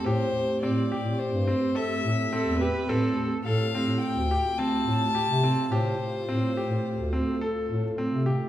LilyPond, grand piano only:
\new Staff \with { instrumentName = "Grand piano" } { \time 5/4 \key f \lydian \tempo 4 = 106 g'4 c'8 g'4 c'8 a'4 c'8 g'8 | c'4 a'8 c'4 g'8 c'4 g'8 c'8 | g'4 c'8 g'4 c'8 a'4 c'8 g'8 | }